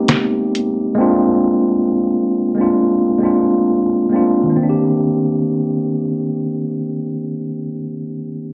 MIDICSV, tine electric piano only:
0, 0, Header, 1, 2, 480
1, 0, Start_track
1, 0, Key_signature, -3, "minor"
1, 0, Tempo, 895522
1, 522, Time_signature, 4, 2, 24, 8
1, 4572, End_track
2, 0, Start_track
2, 0, Title_t, "Tine electric piano"
2, 0, Program_c, 0, 4
2, 0, Control_c, 0, 64, 127
2, 0, Note_on_c, 0, 56, 67
2, 0, Note_on_c, 0, 58, 71
2, 0, Note_on_c, 0, 59, 55
2, 0, Note_on_c, 0, 60, 67
2, 0, Note_on_c, 0, 63, 70
2, 0, Note_on_c, 0, 67, 82
2, 261, Note_off_c, 0, 56, 0
2, 266, Note_off_c, 0, 58, 0
2, 275, Note_off_c, 0, 63, 0
2, 279, Note_off_c, 0, 67, 0
2, 288, Note_off_c, 0, 60, 0
2, 508, Note_on_c, 0, 56, 111
2, 517, Note_on_c, 0, 58, 92
2, 526, Note_on_c, 0, 60, 98
2, 528, Control_c, 0, 64, 0
2, 532, Note_off_c, 0, 59, 0
2, 535, Note_on_c, 0, 62, 92
2, 543, Note_on_c, 0, 65, 106
2, 629, Control_c, 0, 64, 127
2, 1063, Note_off_c, 0, 56, 0
2, 1067, Note_off_c, 0, 58, 0
2, 1072, Note_off_c, 0, 60, 0
2, 1076, Note_off_c, 0, 62, 0
2, 1080, Note_off_c, 0, 65, 0
2, 1365, Note_on_c, 0, 56, 67
2, 1374, Note_on_c, 0, 58, 63
2, 1384, Note_on_c, 0, 60, 63
2, 1392, Note_on_c, 0, 62, 64
2, 1400, Note_on_c, 0, 65, 78
2, 1602, Note_off_c, 0, 56, 0
2, 1607, Note_off_c, 0, 58, 0
2, 1612, Note_off_c, 0, 60, 0
2, 1616, Note_off_c, 0, 62, 0
2, 1620, Note_off_c, 0, 65, 0
2, 1706, Note_on_c, 0, 56, 74
2, 1716, Note_on_c, 0, 58, 65
2, 1725, Note_on_c, 0, 60, 59
2, 1733, Note_on_c, 0, 62, 69
2, 1742, Note_on_c, 0, 65, 73
2, 2033, Note_off_c, 0, 56, 0
2, 2037, Note_off_c, 0, 58, 0
2, 2042, Note_off_c, 0, 60, 0
2, 2046, Note_off_c, 0, 62, 0
2, 2051, Note_off_c, 0, 65, 0
2, 2194, Note_on_c, 0, 56, 69
2, 2202, Note_on_c, 0, 58, 62
2, 2211, Note_on_c, 0, 60, 71
2, 2220, Note_on_c, 0, 62, 65
2, 2229, Note_on_c, 0, 65, 77
2, 2365, Note_off_c, 0, 56, 0
2, 2369, Note_off_c, 0, 58, 0
2, 2374, Note_off_c, 0, 60, 0
2, 2377, Note_on_c, 0, 51, 71
2, 2379, Note_off_c, 0, 62, 0
2, 2383, Note_off_c, 0, 65, 0
2, 2411, Note_on_c, 0, 58, 67
2, 2446, Note_on_c, 0, 60, 69
2, 2448, Control_c, 0, 64, 0
2, 2482, Note_on_c, 0, 62, 68
2, 2517, Note_on_c, 0, 67, 82
2, 2551, Control_c, 0, 64, 127
2, 4045, Note_off_c, 0, 51, 0
2, 4080, Note_off_c, 0, 58, 0
2, 4115, Note_off_c, 0, 60, 0
2, 4151, Note_off_c, 0, 62, 0
2, 4186, Note_off_c, 0, 67, 0
2, 4572, End_track
0, 0, End_of_file